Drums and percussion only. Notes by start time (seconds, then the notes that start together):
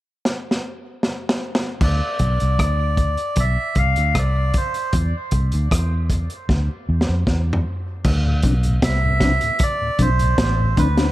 0.25 snare
0.51 snare
1.03 snare
1.29 snare
1.55 snare
1.81 kick, crash
2.19 kick, closed hi-hat
2.40 closed hi-hat
2.59 kick, cross-stick, closed hi-hat
2.97 kick, closed hi-hat
3.17 closed hi-hat
3.36 kick, closed hi-hat
3.75 kick, closed hi-hat
3.96 closed hi-hat
4.15 kick, cross-stick, closed hi-hat
4.54 kick, closed hi-hat
4.74 closed hi-hat
4.93 kick, closed hi-hat
5.31 kick, closed hi-hat
5.52 closed hi-hat
5.71 kick, cross-stick, closed hi-hat
6.10 kick, closed hi-hat
6.30 closed hi-hat
6.49 kick, snare
7.01 snare
7.27 kick, snare
7.53 floor tom
8.04 kick, crash
8.42 kick, closed hi-hat
8.63 closed hi-hat
8.82 kick, snare, closed hi-hat
9.20 kick, snare, closed hi-hat
9.41 closed hi-hat
9.59 kick, closed hi-hat
9.99 kick, closed hi-hat
10.19 closed hi-hat
10.38 kick, snare, closed hi-hat
10.77 kick, closed hi-hat
10.97 snare, closed hi-hat